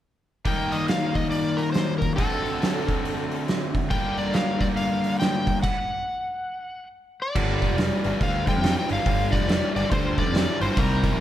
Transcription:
0.45 D#3 G3 A#3 D#4 G5, kick, open hi-hat
0.72 D#5, open hi-hat
0.88 F5, snare, open hi-hat
1.15 D#5, kick, open hi-hat
1.31 D5, open hi-hat
1.57 A#4, open hi-hat
1.73 C5, snare, open hi-hat
1.98 A#4, kick, open hi-hat
2.16 D3 A3 C4 F#4 A4, kick, open hi-hat
2.46 open hi-hat
2.62 snare, open hi-hat
2.88 kick, open hi-hat
3.05 open hi-hat
3.32 open hi-hat
3.48 snare, open hi-hat
3.75 kick, open hi-hat
3.90 G2 D3 G3 A#3 D4 G4 G5, kick, open hi-hat
4.17 D5, open hi-hat
4.34 F5, snare, open hi-hat
4.61 D5, kick, open hi-hat
4.76 F5, open hi-hat
5.04 open hi-hat
5.20 G5, snare, open hi-hat
5.47 kick, open hi-hat
5.63 F#5, kick, crash
7.22 D5
7.35 G1 G2 D3 G3 F4 A#4, kick, crash
7.61 G2 D3, kick, open hi-hat
7.71 F1
7.76 G2 E3, snare, open hi-hat
8.04 G1 G2 E3, open hi-hat
8.20 D2 G2 D3 F5, kick, open hi-hat
8.46 G2 D3 G5, kick, open hi-hat
8.56 F2
8.62 G2 E3, snare, open hi-hat
8.79 G5
8.88 G1 G2 E3, open hi-hat
8.93 F5
9.04 G1 G2 D3, kick, open hi-hat
9.30 G2 D3 D5, kick, open hi-hat
9.41 F1
9.47 G2 E3, snare, open hi-hat
9.74 G1 G2 E3 D5, open hi-hat
9.90 D2 G2 D3 C5, kick, open hi-hat
10.17 G2 D3 D5, kick, open hi-hat
10.27 F2
10.34 G2 E3, snare, open hi-hat
10.60 G1 G2 E3 C5, open hi-hat
10.75 C2 C3 G3 A#3 D#4 A#4 C5, kick, open hi-hat
11.03 C3 G3, kick, open hi-hat
11.12 A#1

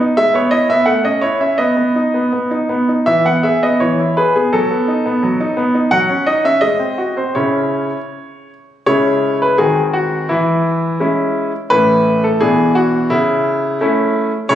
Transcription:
0.01 D#4
0.17 G#3 E5
0.34 B3 C#5
0.51 E4 D#5
0.69 B3 E5
0.86 A3 F#5
1.04 C#4 D#5
1.21 E4 C#5
1.40 C#4 E5
1.58 B3 D#5
1.77 B3
1.95 D#4
2.14 B3
2.33 B3
2.51 D#4
2.69 B3
2.89 D#4
3.06 E3 E5
3.25 B3 F#5
3.43 G#4 E5
3.62 B3 D#5
3.80 E3 C#5
3.99 E4
4.17 G#4 B4
4.35 B3 G#4
4.53 F#3 A4
4.71 B3
4.88 D#4
5.06 B3
5.23 F#3
5.40 D#4
5.57 B3
5.75 D#4
5.91 F#3 F#5
6.09 C#4
6.27 D#4 D#5
6.44 C#4 E5
6.61 G#3 D#5
6.79 C4
6.98 F#4
7.17 C4 C5
7.35 C#3 C#4 E4 C#5
8.86 C#3 G#3 C#4 E4 C#5
9.42 B4
9.58 D#3 G#3 C4 F#4 G#4
9.93 F#4
10.29 E3 E4
11.00 G#3 C#4 E4
11.70 A2 E3 C#4 E4 B4
12.24 A4
12.41 B2 E3 D4 E4 G#4
12.75 F#4
13.10 C#3 E4
13.81 A3 C#4 E4
14.49 C#3 G#3 C#4 E4 C#5

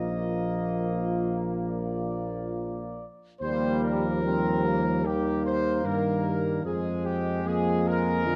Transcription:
Already playing: A#1 F3 A#3 F4 D#5
1.67 D5
3.40 D#2 F3 G3 A#3 C5
3.84 A#4
4.23 G3 C4
4.66 A#3
5.04 D#3 A#3 G4
5.46 C5
5.84 G2 D#3 G3 A#4
6.64 F2 F3 G#3 G#4
7.05 G4
7.45 F3 A#3 G#4
7.87 A#4
8.25 D3 F4

